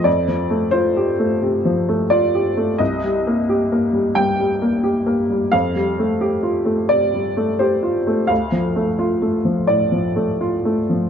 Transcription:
X:1
M:4/4
L:1/8
Q:1/4=87
K:Fmix
V:1 name="Upright piano"
d2 c4 d2 | e4 g4 | f4 d2 c z | f4 d4 |]
V:2 name="Upright piano"
(3F,, F, A, (3F G A, (3C, F, A, (3F G A, | (3C,, G, B, (3G B, G, (3G,, G, B, (3G B, G, | (3F,, G, A, (3G F A, (3C, G, A, (3G F A, | (3D,, F, A, (3F A, F, (3A,, F, A, (3F A, F, |]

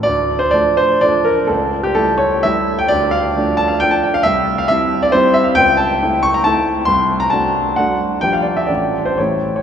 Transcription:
X:1
M:3/4
L:1/16
Q:1/4=131
K:Dm
V:1 name="Grand piano"
d3 c d2 c2 d2 B2 | A3 G A2 ^c2 e3 g | d2 f4 a f g a g f | e3 f e3 d c2 e f |
g2 a4 ^c' b a4 | c'3 b a4 ^f2 z2 | g f d e d3 c ^c3 c |]
V:2 name="Grand piano"
D,,4 [F,A,D]4 [F,A,D]4 | ^C,,4 [G,A,E]4 [G,A,E]4 | D,,4 [F,A,D]4 [F,A,D]4 | C,,4 [G,CE]4 [G,CE]4 |
^C,,4 [A,E]4 [A,E]4 | C,,4 [A,D^F]4 [A,DF]4 | [B,,,G,DG]4 [A,,,A,DF]4 [A,,,A,EG]4 |]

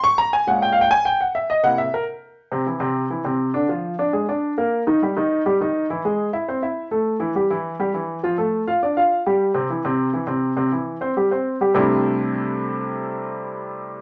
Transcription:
X:1
M:4/4
L:1/8
Q:1/4=205
K:Cmix
V:1 name="Upright piano"
_d' b _a _g (3=g f g a g | ^f e _e f =e B z2 | [K:C] z [C,C] [E,E] [C,C]2 [E,E] [C,C]2 | [D,D] [F,F]2 [Dd] [_A,_A] [Dd]2 [_B,_B]- |
[_B,_B] [_E,_E] [G,G] [E,E]2 [G,G] [E,E]2 | [E,E] [^G,^G]2 [Ee] [^B,^B] [Ee]2 [A,A]- | [A,A] [E,E] [G,G] [E,E]2 [G,G] [E,E]2 | [F,F] [A,A]2 [Ff] [Dd] [Ff]2 [G,G]- |
[G,G] [C,C] [E,E] [C,C]2 [E,E] [C,C]2 | [C,C] [E,E]2 [Cc] [G,G] [Cc]2 [G,G] | [C,G,A,CDE]8- | [C,G,A,CDE]8 |]
V:2 name="Upright piano"
z3 [B,,_A,_D]3 z2 | z3 [C,B,E] z4 | [K:C] z8 | z8 |
z8 | z8 | z8 | z8 |
z8 | z8 | z8 | z8 |]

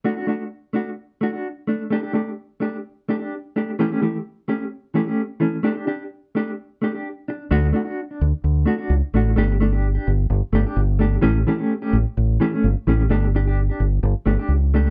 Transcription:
X:1
M:4/4
L:1/16
Q:1/4=129
K:D
V:1 name="Clean electric guitar"
[A,DF] [DF] [A,DF] z3 [A,DF] z3 [A,DF] [DF] z2 [A,D] z | [A,DG] [DG] [A,DG] z3 [A,DG] z3 [A,DG] [DG] z2 [A,DG] z | [E,A,CG] [A,CG] [E,A,G] z3 [A,CG] z3 [E,A,CG] [A,CG] z2 [E,A,C] z | [A,DG] [DG] [DG] z3 [A,DG] z3 [A,DG] [DG] z2 D z |
[A,DF] z [A,DF] [DF] z D z4 [A,DF] [DF] z2 [A,DF] z | [A,DG] z [A,D] [DG] z [DG] z4 [A,DG] [DG] z2 [A,DG] z | [E,A,CG] z [E,A,CG] [A,CG] z [A,CG] z4 [E,A,CG] [A,C] z2 [E,A,CG] z | [A,DG] z [DG] [DG] z [DG] z4 [A,DG] [DG] z2 [A,DG] z |]
V:2 name="Fingered electric bass" clef=bass
z16 | z16 | z16 | z16 |
D,,2 z4 D,, z D,,2 z2 C,, z A,,,2 | G,,,6 G,,,2 G,,, z G,,, z G,,,4 | A,,,2 z4 A,,, z A,,,2 z2 G,,, z A,,,2 | G,,,6 G,,,2 G,,, z G,,, z C,,4 |]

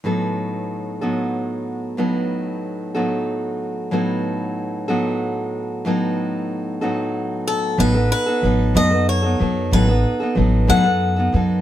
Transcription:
X:1
M:6/8
L:1/16
Q:3/8=62
K:Bmix
V:1 name="Steel-string acoustic guitar"
z12 | z12 | z12 | z8 z2 A2 |
B2 B4 d2 c4 | B6 f4 z2 |]
V:2 name="Steel-string acoustic guitar"
[A,,F,B,DA]6 [A,,F,B,DA]6 | [A,,F,B,DA]6 [A,,F,B,DA]6 | [A,,F,B,DA]6 [A,,F,B,DA]6 | [A,,F,B,DA]6 [A,,F,B,DA]6 |
[A,,F,B,DA] [B,DA]2 [B,DA] [F,B,DA]2 [A,,F,B,DA] [B,DA]2 [B,DA] [F,B,DA]2 | [A,,F,B,DA] [B,DA]2 [B,DA] [F,B,DA]2 [A,,F,B,DA] [B,DA]2 [B,DA] [F,B,DA]2 |]
V:3 name="Upright bass" clef=bass
z12 | z12 | z12 | z12 |
A,,,2 z2 A,,,2 F,,4 F,,2 | A,,,2 z2 A,,,2 F,,4 F,,2 |]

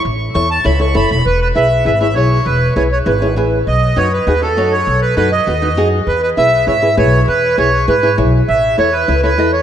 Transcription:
X:1
M:4/4
L:1/8
Q:1/4=199
K:E
V:1 name="Accordion"
z2 c' a b c' b b | B B e2 e e c2 | B2 c c B2 z2 | d2 c B B A2 c- |
c B B d4 z | B B e2 e2 c2 | B2 c2 B2 z2 | e2 c B2 B2 c |]
V:2 name="Nylon-string guitar"
z2 [EAc] z [EAc] [EAc] [EAc] z | z2 [EGB] z [EGB] [EGc] [EGc] z | z2 [EGB] z [EGB] [EGc] [EGB] z | z2 [DFB] z [DFG] [DFA] [DFc] z |
z2 [DFA] z [DFB] [DFB] [DFG] z | z2 [EGB] z [EGc] [EGB] [EGB] z | z2 [EGB] z [EGB] [EGB] [EGc] z | z2 [EAc] z [EAB] [EAc] [EAd] z |]
V:3 name="Upright bass" clef=bass
A,,,2 E,,2 C,,2 F,,, E,,, | E,,,2 B,,,2 G,,,2 B,,,2 | E,,,2 B,,,2 G,,,2 A,,,2 | B,,,2 F,,2 D,,2 F,,2 |
B,,,2 F,,2 D,,2 F,,2 | E,,2 B,,,2 G,,2 B,,,2 | E,,2 B,,,2 G,,2 B,,,2 | A,,,2 E,,2 C,,2 E,,2 |]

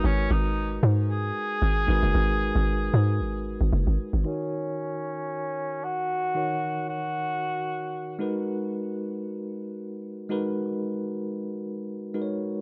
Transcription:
X:1
M:4/4
L:1/16
Q:"Swing 16ths" 1/4=114
K:G#m
V:1 name="Tine electric piano"
[G,DFAB]12- [G,DFAB]2 [G,DFAB]2- | [G,DFAB]12- [G,DFAB]2 z2 | [D,DFAc]16 | [D,DFAc]12- [D,DFAc]2 [G,DFAB]2- |
[G,DFAB]12- [G,DFAB]2 [G,DFAB]2- | [G,DFAB]12 [G,DFABc]4 |]
V:2 name="Cor anglais"
C2 D4 z2 G8- | G12 z4 | C12 F4- | F4 F8- F2 z2 |
z16 | z16 |]
V:3 name="Log drum bass" clef=bass
G,,,2 G,,,4 G,,4 z2 G,,,2 G,,, F,,, | G,,,3 G,,,3 G,,2 G,,,3 G,,, F,,, G,,, z G,,, | z16 | z16 |
z16 | z16 |]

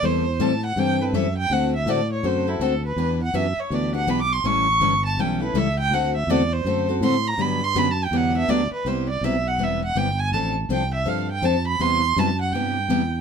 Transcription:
X:1
M:4/4
L:1/16
Q:"Swing" 1/4=163
K:Clyd
V:1 name="Violin"
c4 a2 f2 g2 B2 e2 g2 | f2 e2 d2 ^c2 =c2 E2 A2 B2- | B2 f2 e2 ^c2 d2 f2 (3b2 d'2 =c'2 | ^c'6 a2 g2 B2 e2 g2 |
f2 e2 d2 c4 z2 c'2 _b2 | b2 c'2 (3b2 a2 g2 f2 e2 d2 B2 | c2 d2 e2 f2 e2 f2 g2 _a2 | a2 z2 g2 e2 =f2 g2 a2 b2 |
c'4 a2 f2 g8 |]
V:2 name="Steel-string acoustic guitar"
[E,G,CEA]2 z2 [E,G,CEA] z3 [E,G,CEA]2 [CEA]2 [E,G,CEA] z3 | [D,A,CFA]2 z2 [D,A,CFA] z3 [D,A,CFA]2 [CFA]2 [D,A,CFA] z3 | [E,B,DG]2 z2 [E,B,DG] z3 [E,B,DG]2 [B,DG]2 [E,B,DG] z3 | [E,G,^CEA]2 z2 [E,G,CEA] z3 [E,G,CEA]2 [CEA]2 [E,G,CEA] z3 |
[D,A,CFA]2 z2 [D,A,CFA] z3 [D,A,CFA]2 [CFA]2 [D,A,CFA] z3 | [D,F,B,DG]2 z2 [D,F,B,DG] z3 [D,F,B,DG]2 [B,D]2 [D,F,B,DG] z3 | [C,G,B,EG]2 z2 [C,G,B,EG] z3 [C,G,B,EG]2 z2 [C,G,B,EG] z3 | [=F,CDA]2 z2 [F,CDA] z3 [F,CDA]2 z2 [F,CDA] z3 |
[C,G,B,EG]2 z2 [C,G,B,EG] z3 [C,G,B,EG]2 z2 [C,G,B,EG] z3 |]
V:3 name="Fingered electric bass" clef=bass
E,,4 A,,4 G,,4 F,,4 | D,,4 A,,4 F,,4 D,,4 | E,,4 F,,2 z2 D,,4 B,,,4 | A,,,4 G,,,4 B,,,4 ^C,,4 |
D,,4 E,,4 F,,4 A,,4 | G,,4 F,,4 E,,4 D,,2 z2 | C,,4 B,,,4 E,,,4 G,,,4 | A,,,4 C,,4 G,,4 =F,,4 |
E,,4 F,,4 G,,4 E,,4 |]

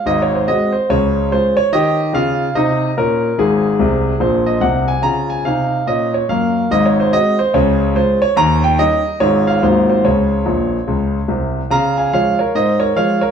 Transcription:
X:1
M:4/4
L:1/8
Q:"Swing" 1/4=144
K:Db
V:1 name="Grand piano"
(3e d c e c d2 c d | e2 f2 e2 B2 | A4 c e g a | b a f2 e d f2 |
(3e d c e c d2 c d | b =g e2 d f c c | d6 z2 | [fb] [fa] [df] [Bd] [ce] [Bd] [df] [Bd] |]
V:2 name="Grand piano" clef=bass
[A,,,A,,]2 [A,CG]2 [D,,D,]2 [A,DF]2 | [E,=G]2 [D,F]2 [C,E]2 [B,,D]2 | [A,,,A,,]2 [C,,C,]2 [B,,,B,,]2 [C,,C,]2 | [D,F]2 [C,E]2 [B,,D]2 [G,,B,]2 |
[A,,,A,,]2 [A,CG]2 [D,,D,]2 [A,DF]2 | [E,,E,]2 [=G,DE]2 [A,,,A,,A,DF]2 [A,,,A,,_G,B,F]2 | [D,,D,]2 [B,,,B,,]2 [D,,D,]2 [C,,C,]2 | D,2 [F,A,F]2 A,,2 [F,A,F]2 |]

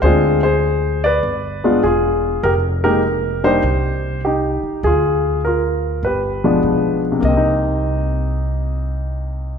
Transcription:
X:1
M:4/4
L:1/8
Q:"Swing" 1/4=100
K:Cm
V:1 name="Grand piano"
[Ac] [Ac]2 [=Bd]3 [FA]2 | [GB] B2 [Gc]3 [EG]2 | [FA]2 [FB]2 [G=B]3 z | e8 |]
V:2 name="Grand piano"
[A,CDF] z4 [A,=B,DF] z2 | z [A,B,EG] z [G,B,DE] z4 | z4 z [F,A,=B,D]3 | [C,B,CE]8 |]
V:3 name="Upright bass" clef=bass
D,,4 G,,,2 =E,,,2 | F,,,4 C,,3 z | D,,4 G,,,2 =B,,,2 | C,,8 |]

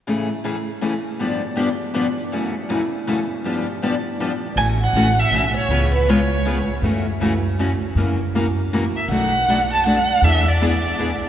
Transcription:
X:1
M:3/4
L:1/16
Q:"Swing" 1/4=160
K:A
V:1 name="Violin"
z12 | z12 | z12 | z12 |
g2 f4 e4 c2- | c2 B2 c6 z2 | z12 | z8 z2 e2 |
f6 a2 f4 | e2 d8 z2 |]
V:2 name="Steel-string acoustic guitar"
[A,,C,E,A,CG]2 z2 [A,,C,E,A,CG] z3 [A,,C,E,A,CG] z3 | [=G,,D,=F,B,D=G]2 z2 [G,,D,F,B,DG] z3 [G,,D,F,B,DG] z3 | [F,,C,E,A,CF]2 z2 [F,,C,E,A,CF] z3 [F,,C,E,A,CF] z3 | [=G,,D,=F,B,D=G]2 z2 [G,,D,F,B,DG] z3 [G,,D,F,B,DG] z3 |
[C,E,A,CF]2 z2 [C,E,A,CF] z3 [C,E,A,CF] z3 | [C,G,B,^EG]2 z2 [C,G,B,EG] z3 [C,G,B,EG] z3 | [C,E,A,CF]2 z2 [C,E,A,CF] z3 [C,E,A,CF] z3 | [C,E,^A,CF]2 z2 [C,E,A,CF] z3 [C,E,A,CF] z3 |
[B,,F,A,DF]2 z2 [B,,F,A,DF] z3 [B,,F,A,DF] z3 | [E,B,DG]2 z2 [E,B,DG] z3 [E,B,DG] z3 |]
V:3 name="Upright bass" clef=bass
z12 | z12 | z12 | z12 |
A,,,4 A,,,4 B,,,4 | C,,12 | F,,12 | F,,12 |
B,,,12 | E,,12 |]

